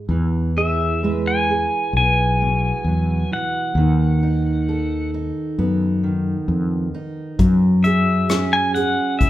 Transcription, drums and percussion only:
0, 0, Header, 1, 2, 480
1, 0, Start_track
1, 0, Tempo, 911854
1, 49, Time_signature, 4, 2, 24, 8
1, 4895, End_track
2, 0, Start_track
2, 0, Title_t, "Drums"
2, 3891, Note_on_c, 9, 36, 72
2, 3891, Note_on_c, 9, 42, 55
2, 3943, Note_off_c, 9, 42, 0
2, 3944, Note_off_c, 9, 36, 0
2, 4127, Note_on_c, 9, 42, 39
2, 4180, Note_off_c, 9, 42, 0
2, 4365, Note_on_c, 9, 42, 64
2, 4368, Note_on_c, 9, 37, 78
2, 4418, Note_off_c, 9, 42, 0
2, 4421, Note_off_c, 9, 37, 0
2, 4609, Note_on_c, 9, 42, 40
2, 4661, Note_off_c, 9, 42, 0
2, 4847, Note_on_c, 9, 36, 57
2, 4847, Note_on_c, 9, 42, 54
2, 4895, Note_off_c, 9, 36, 0
2, 4895, Note_off_c, 9, 42, 0
2, 4895, End_track
0, 0, End_of_file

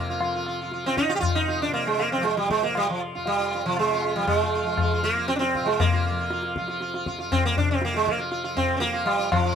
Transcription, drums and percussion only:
0, 0, Header, 1, 2, 480
1, 0, Start_track
1, 0, Tempo, 509771
1, 1155, Time_signature, 3, 2, 24, 8
1, 4510, Tempo, 502513
1, 9057, End_track
2, 0, Start_track
2, 0, Title_t, "Tabla"
2, 193, Note_on_c, 9, 60, 91
2, 288, Note_off_c, 9, 60, 0
2, 437, Note_on_c, 9, 60, 63
2, 531, Note_off_c, 9, 60, 0
2, 674, Note_on_c, 9, 62, 73
2, 768, Note_off_c, 9, 62, 0
2, 794, Note_on_c, 9, 62, 65
2, 888, Note_off_c, 9, 62, 0
2, 915, Note_on_c, 9, 37, 60
2, 1009, Note_off_c, 9, 37, 0
2, 1036, Note_on_c, 9, 62, 68
2, 1130, Note_off_c, 9, 62, 0
2, 1154, Note_on_c, 9, 60, 82
2, 1154, Note_on_c, 9, 64, 74
2, 1248, Note_off_c, 9, 60, 0
2, 1248, Note_off_c, 9, 64, 0
2, 1394, Note_on_c, 9, 62, 68
2, 1489, Note_off_c, 9, 62, 0
2, 1640, Note_on_c, 9, 60, 90
2, 1734, Note_off_c, 9, 60, 0
2, 1878, Note_on_c, 9, 60, 65
2, 1972, Note_off_c, 9, 60, 0
2, 2116, Note_on_c, 9, 62, 74
2, 2210, Note_off_c, 9, 62, 0
2, 2236, Note_on_c, 9, 62, 66
2, 2330, Note_off_c, 9, 62, 0
2, 2353, Note_on_c, 9, 37, 59
2, 2447, Note_off_c, 9, 37, 0
2, 2472, Note_on_c, 9, 62, 67
2, 2567, Note_off_c, 9, 62, 0
2, 2590, Note_on_c, 9, 60, 83
2, 2685, Note_off_c, 9, 60, 0
2, 2828, Note_on_c, 9, 60, 67
2, 2922, Note_off_c, 9, 60, 0
2, 3067, Note_on_c, 9, 63, 87
2, 3161, Note_off_c, 9, 63, 0
2, 3307, Note_on_c, 9, 60, 65
2, 3402, Note_off_c, 9, 60, 0
2, 3547, Note_on_c, 9, 60, 86
2, 3641, Note_off_c, 9, 60, 0
2, 3786, Note_on_c, 9, 60, 61
2, 3880, Note_off_c, 9, 60, 0
2, 4024, Note_on_c, 9, 60, 81
2, 4024, Note_on_c, 9, 64, 75
2, 4119, Note_off_c, 9, 60, 0
2, 4119, Note_off_c, 9, 64, 0
2, 4496, Note_on_c, 9, 60, 95
2, 4496, Note_on_c, 9, 64, 81
2, 4591, Note_off_c, 9, 60, 0
2, 4591, Note_off_c, 9, 64, 0
2, 4742, Note_on_c, 9, 62, 66
2, 4837, Note_off_c, 9, 62, 0
2, 4984, Note_on_c, 9, 62, 82
2, 5079, Note_off_c, 9, 62, 0
2, 5108, Note_on_c, 9, 62, 67
2, 5203, Note_off_c, 9, 62, 0
2, 5237, Note_on_c, 9, 37, 62
2, 5332, Note_off_c, 9, 37, 0
2, 5353, Note_on_c, 9, 62, 68
2, 5449, Note_off_c, 9, 62, 0
2, 5474, Note_on_c, 9, 60, 112
2, 5474, Note_on_c, 9, 64, 104
2, 5569, Note_off_c, 9, 60, 0
2, 5569, Note_off_c, 9, 64, 0
2, 5957, Note_on_c, 9, 62, 96
2, 6053, Note_off_c, 9, 62, 0
2, 6075, Note_on_c, 9, 62, 70
2, 6170, Note_off_c, 9, 62, 0
2, 6200, Note_on_c, 9, 37, 67
2, 6295, Note_off_c, 9, 37, 0
2, 6316, Note_on_c, 9, 62, 67
2, 6411, Note_off_c, 9, 62, 0
2, 6437, Note_on_c, 9, 62, 82
2, 6533, Note_off_c, 9, 62, 0
2, 6565, Note_on_c, 9, 62, 68
2, 6660, Note_off_c, 9, 62, 0
2, 6682, Note_on_c, 9, 37, 65
2, 6778, Note_off_c, 9, 37, 0
2, 6801, Note_on_c, 9, 62, 73
2, 6897, Note_off_c, 9, 62, 0
2, 6926, Note_on_c, 9, 60, 80
2, 6926, Note_on_c, 9, 64, 75
2, 7022, Note_off_c, 9, 60, 0
2, 7022, Note_off_c, 9, 64, 0
2, 7166, Note_on_c, 9, 64, 62
2, 7262, Note_off_c, 9, 64, 0
2, 7401, Note_on_c, 9, 62, 96
2, 7496, Note_off_c, 9, 62, 0
2, 7520, Note_on_c, 9, 62, 72
2, 7615, Note_off_c, 9, 62, 0
2, 7648, Note_on_c, 9, 37, 66
2, 7743, Note_off_c, 9, 37, 0
2, 7765, Note_on_c, 9, 62, 70
2, 7861, Note_off_c, 9, 62, 0
2, 7880, Note_on_c, 9, 62, 78
2, 7975, Note_off_c, 9, 62, 0
2, 8001, Note_on_c, 9, 62, 68
2, 8097, Note_off_c, 9, 62, 0
2, 8122, Note_on_c, 9, 63, 76
2, 8122, Note_on_c, 9, 64, 69
2, 8217, Note_off_c, 9, 63, 0
2, 8217, Note_off_c, 9, 64, 0
2, 8356, Note_on_c, 9, 62, 83
2, 8451, Note_off_c, 9, 62, 0
2, 8598, Note_on_c, 9, 60, 87
2, 8693, Note_off_c, 9, 60, 0
2, 8836, Note_on_c, 9, 60, 115
2, 8836, Note_on_c, 9, 64, 107
2, 8932, Note_off_c, 9, 60, 0
2, 8932, Note_off_c, 9, 64, 0
2, 9057, End_track
0, 0, End_of_file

